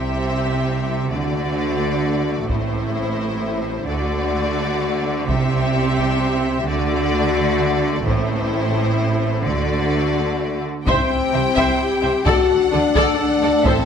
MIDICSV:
0, 0, Header, 1, 9, 480
1, 0, Start_track
1, 0, Tempo, 465116
1, 1135, Time_signature, 3, 2, 24, 8
1, 14293, End_track
2, 0, Start_track
2, 0, Title_t, "Violin section"
2, 0, Program_c, 0, 48
2, 0, Note_on_c, 0, 76, 36
2, 1099, Note_off_c, 0, 76, 0
2, 1147, Note_on_c, 0, 74, 39
2, 2540, Note_off_c, 0, 74, 0
2, 2577, Note_on_c, 0, 72, 40
2, 3975, Note_off_c, 0, 72, 0
2, 4000, Note_on_c, 0, 74, 42
2, 5406, Note_off_c, 0, 74, 0
2, 5453, Note_on_c, 0, 76, 49
2, 6853, Note_off_c, 0, 76, 0
2, 6904, Note_on_c, 0, 74, 56
2, 8299, Note_off_c, 0, 74, 0
2, 8331, Note_on_c, 0, 72, 52
2, 9732, Note_off_c, 0, 72, 0
2, 9768, Note_on_c, 0, 74, 44
2, 10964, Note_off_c, 0, 74, 0
2, 11212, Note_on_c, 0, 79, 49
2, 12613, Note_off_c, 0, 79, 0
2, 12675, Note_on_c, 0, 78, 51
2, 14077, Note_off_c, 0, 78, 0
2, 14080, Note_on_c, 0, 76, 54
2, 14293, Note_off_c, 0, 76, 0
2, 14293, End_track
3, 0, Start_track
3, 0, Title_t, "Violin section"
3, 0, Program_c, 1, 48
3, 0, Note_on_c, 1, 67, 34
3, 1095, Note_off_c, 1, 67, 0
3, 1155, Note_on_c, 1, 66, 34
3, 2544, Note_off_c, 1, 66, 0
3, 2583, Note_on_c, 1, 64, 40
3, 3978, Note_off_c, 1, 64, 0
3, 4032, Note_on_c, 1, 66, 44
3, 5423, Note_off_c, 1, 66, 0
3, 5460, Note_on_c, 1, 67, 46
3, 6856, Note_off_c, 1, 67, 0
3, 6888, Note_on_c, 1, 66, 53
3, 8290, Note_off_c, 1, 66, 0
3, 8344, Note_on_c, 1, 64, 51
3, 9738, Note_off_c, 1, 64, 0
3, 9783, Note_on_c, 1, 66, 41
3, 10971, Note_off_c, 1, 66, 0
3, 11219, Note_on_c, 1, 76, 48
3, 11441, Note_off_c, 1, 76, 0
3, 11698, Note_on_c, 1, 76, 35
3, 11781, Note_off_c, 1, 76, 0
3, 11925, Note_on_c, 1, 76, 60
3, 12153, Note_off_c, 1, 76, 0
3, 12404, Note_on_c, 1, 76, 46
3, 12487, Note_off_c, 1, 76, 0
3, 12642, Note_on_c, 1, 74, 54
3, 12871, Note_off_c, 1, 74, 0
3, 13127, Note_on_c, 1, 74, 42
3, 13209, Note_off_c, 1, 74, 0
3, 13370, Note_on_c, 1, 74, 64
3, 13595, Note_off_c, 1, 74, 0
3, 13849, Note_on_c, 1, 74, 53
3, 13932, Note_off_c, 1, 74, 0
3, 14100, Note_on_c, 1, 72, 55
3, 14293, Note_off_c, 1, 72, 0
3, 14293, End_track
4, 0, Start_track
4, 0, Title_t, "Viola section"
4, 0, Program_c, 2, 48
4, 0, Note_on_c, 2, 60, 38
4, 1105, Note_off_c, 2, 60, 0
4, 1148, Note_on_c, 2, 57, 42
4, 3980, Note_off_c, 2, 57, 0
4, 4010, Note_on_c, 2, 57, 43
4, 5412, Note_off_c, 2, 57, 0
4, 5448, Note_on_c, 2, 60, 50
4, 6850, Note_off_c, 2, 60, 0
4, 6894, Note_on_c, 2, 57, 53
4, 9734, Note_off_c, 2, 57, 0
4, 9776, Note_on_c, 2, 57, 44
4, 10968, Note_off_c, 2, 57, 0
4, 11225, Note_on_c, 2, 72, 57
4, 11443, Note_off_c, 2, 72, 0
4, 11700, Note_on_c, 2, 72, 36
4, 11782, Note_off_c, 2, 72, 0
4, 11946, Note_on_c, 2, 72, 51
4, 12164, Note_off_c, 2, 72, 0
4, 12408, Note_on_c, 2, 72, 44
4, 12490, Note_off_c, 2, 72, 0
4, 12649, Note_on_c, 2, 69, 65
4, 12875, Note_off_c, 2, 69, 0
4, 13122, Note_on_c, 2, 69, 46
4, 13204, Note_off_c, 2, 69, 0
4, 13373, Note_on_c, 2, 69, 66
4, 13597, Note_off_c, 2, 69, 0
4, 13860, Note_on_c, 2, 69, 47
4, 13942, Note_off_c, 2, 69, 0
4, 14094, Note_on_c, 2, 69, 60
4, 14293, Note_off_c, 2, 69, 0
4, 14293, End_track
5, 0, Start_track
5, 0, Title_t, "String section"
5, 0, Program_c, 3, 48
5, 11231, Note_on_c, 3, 64, 59
5, 11236, Note_on_c, 3, 60, 59
5, 11236, Note_on_c, 3, 67, 57
5, 11238, Note_on_c, 3, 79, 58
5, 12622, Note_off_c, 3, 64, 0
5, 12624, Note_off_c, 3, 60, 0
5, 12624, Note_off_c, 3, 67, 0
5, 12625, Note_off_c, 3, 79, 0
5, 12649, Note_on_c, 3, 57, 61
5, 12650, Note_on_c, 3, 69, 65
5, 12657, Note_on_c, 3, 62, 60
5, 12659, Note_on_c, 3, 78, 55
5, 14086, Note_on_c, 3, 76, 63
5, 14087, Note_on_c, 3, 64, 66
5, 14096, Note_off_c, 3, 62, 0
5, 14097, Note_off_c, 3, 78, 0
5, 14293, Note_off_c, 3, 57, 0
5, 14293, Note_off_c, 3, 64, 0
5, 14293, Note_off_c, 3, 69, 0
5, 14293, Note_off_c, 3, 76, 0
5, 14293, End_track
6, 0, Start_track
6, 0, Title_t, "French horn section"
6, 0, Program_c, 4, 60
6, 0, Note_on_c, 4, 55, 40
6, 0, Note_on_c, 4, 64, 38
6, 1089, Note_off_c, 4, 55, 0
6, 1089, Note_off_c, 4, 64, 0
6, 1140, Note_on_c, 4, 66, 40
6, 1142, Note_on_c, 4, 57, 36
6, 2550, Note_off_c, 4, 57, 0
6, 2568, Note_on_c, 4, 64, 40
6, 2577, Note_on_c, 4, 60, 38
6, 2578, Note_off_c, 4, 66, 0
6, 3983, Note_off_c, 4, 64, 0
6, 3987, Note_off_c, 4, 60, 0
6, 3997, Note_on_c, 4, 66, 41
6, 4002, Note_on_c, 4, 57, 43
6, 5417, Note_off_c, 4, 66, 0
6, 5420, Note_off_c, 4, 57, 0
6, 5448, Note_on_c, 4, 64, 46
6, 5458, Note_on_c, 4, 55, 49
6, 6863, Note_off_c, 4, 64, 0
6, 6868, Note_off_c, 4, 55, 0
6, 6887, Note_on_c, 4, 57, 52
6, 6900, Note_on_c, 4, 66, 54
6, 8155, Note_off_c, 4, 57, 0
6, 8155, Note_off_c, 4, 66, 0
6, 8330, Note_on_c, 4, 60, 56
6, 8341, Note_on_c, 4, 64, 57
6, 9744, Note_off_c, 4, 60, 0
6, 9749, Note_off_c, 4, 64, 0
6, 9788, Note_on_c, 4, 66, 43
6, 9792, Note_on_c, 4, 57, 43
6, 10958, Note_off_c, 4, 66, 0
6, 10960, Note_off_c, 4, 57, 0
6, 11208, Note_on_c, 4, 60, 66
6, 12131, Note_off_c, 4, 60, 0
6, 12175, Note_on_c, 4, 67, 69
6, 12647, Note_on_c, 4, 66, 72
6, 12655, Note_off_c, 4, 67, 0
6, 13096, Note_on_c, 4, 62, 68
6, 13121, Note_off_c, 4, 66, 0
6, 13586, Note_off_c, 4, 62, 0
6, 13605, Note_on_c, 4, 62, 75
6, 14081, Note_off_c, 4, 62, 0
6, 14083, Note_on_c, 4, 60, 88
6, 14293, Note_off_c, 4, 60, 0
6, 14293, End_track
7, 0, Start_track
7, 0, Title_t, "Cello section"
7, 0, Program_c, 5, 48
7, 0, Note_on_c, 5, 48, 36
7, 1098, Note_off_c, 5, 48, 0
7, 1135, Note_on_c, 5, 50, 39
7, 2564, Note_on_c, 5, 45, 39
7, 2575, Note_off_c, 5, 50, 0
7, 3981, Note_off_c, 5, 45, 0
7, 4007, Note_on_c, 5, 50, 42
7, 5422, Note_off_c, 5, 50, 0
7, 5433, Note_on_c, 5, 48, 46
7, 6884, Note_off_c, 5, 48, 0
7, 6886, Note_on_c, 5, 50, 56
7, 8302, Note_off_c, 5, 50, 0
7, 8323, Note_on_c, 5, 45, 53
7, 9740, Note_off_c, 5, 45, 0
7, 9762, Note_on_c, 5, 50, 45
7, 11002, Note_off_c, 5, 50, 0
7, 11206, Note_on_c, 5, 48, 54
7, 11289, Note_off_c, 5, 48, 0
7, 11689, Note_on_c, 5, 48, 42
7, 11771, Note_off_c, 5, 48, 0
7, 11933, Note_on_c, 5, 48, 59
7, 12015, Note_off_c, 5, 48, 0
7, 12414, Note_on_c, 5, 48, 42
7, 12496, Note_off_c, 5, 48, 0
7, 12641, Note_on_c, 5, 50, 54
7, 12724, Note_off_c, 5, 50, 0
7, 13125, Note_on_c, 5, 50, 46
7, 13208, Note_off_c, 5, 50, 0
7, 13370, Note_on_c, 5, 50, 62
7, 13453, Note_off_c, 5, 50, 0
7, 13853, Note_on_c, 5, 50, 41
7, 13935, Note_off_c, 5, 50, 0
7, 14081, Note_on_c, 5, 45, 62
7, 14163, Note_off_c, 5, 45, 0
7, 14293, End_track
8, 0, Start_track
8, 0, Title_t, "Double bass section"
8, 0, Program_c, 6, 48
8, 0, Note_on_c, 6, 36, 37
8, 1095, Note_off_c, 6, 36, 0
8, 1139, Note_on_c, 6, 38, 43
8, 2558, Note_on_c, 6, 33, 40
8, 2577, Note_off_c, 6, 38, 0
8, 3978, Note_off_c, 6, 33, 0
8, 4011, Note_on_c, 6, 38, 41
8, 5424, Note_off_c, 6, 38, 0
8, 5455, Note_on_c, 6, 36, 48
8, 6885, Note_on_c, 6, 38, 53
8, 6895, Note_off_c, 6, 36, 0
8, 8301, Note_off_c, 6, 38, 0
8, 8322, Note_on_c, 6, 33, 58
8, 9740, Note_off_c, 6, 33, 0
8, 9771, Note_on_c, 6, 38, 46
8, 11007, Note_off_c, 6, 38, 0
8, 11221, Note_on_c, 6, 36, 58
8, 11304, Note_off_c, 6, 36, 0
8, 11699, Note_on_c, 6, 36, 43
8, 11782, Note_off_c, 6, 36, 0
8, 11947, Note_on_c, 6, 36, 60
8, 12030, Note_off_c, 6, 36, 0
8, 12417, Note_on_c, 6, 36, 41
8, 12500, Note_off_c, 6, 36, 0
8, 12661, Note_on_c, 6, 38, 65
8, 12743, Note_off_c, 6, 38, 0
8, 13140, Note_on_c, 6, 38, 45
8, 13222, Note_off_c, 6, 38, 0
8, 13389, Note_on_c, 6, 38, 61
8, 13471, Note_off_c, 6, 38, 0
8, 13867, Note_on_c, 6, 38, 45
8, 13949, Note_off_c, 6, 38, 0
8, 14101, Note_on_c, 6, 33, 68
8, 14184, Note_off_c, 6, 33, 0
8, 14293, End_track
9, 0, Start_track
9, 0, Title_t, "Taiko and cinematic ensemble drums"
9, 2574, Note_on_c, 9, 41, 50
9, 2677, Note_off_c, 9, 41, 0
9, 5454, Note_on_c, 9, 41, 51
9, 5557, Note_off_c, 9, 41, 0
9, 6171, Note_on_c, 9, 41, 30
9, 6274, Note_off_c, 9, 41, 0
9, 8323, Note_on_c, 9, 41, 52
9, 8427, Note_off_c, 9, 41, 0
9, 11217, Note_on_c, 9, 41, 90
9, 11320, Note_off_c, 9, 41, 0
9, 11932, Note_on_c, 9, 41, 68
9, 12035, Note_off_c, 9, 41, 0
9, 12652, Note_on_c, 9, 41, 79
9, 12755, Note_off_c, 9, 41, 0
9, 13368, Note_on_c, 9, 41, 66
9, 13471, Note_off_c, 9, 41, 0
9, 14093, Note_on_c, 9, 41, 93
9, 14196, Note_off_c, 9, 41, 0
9, 14293, End_track
0, 0, End_of_file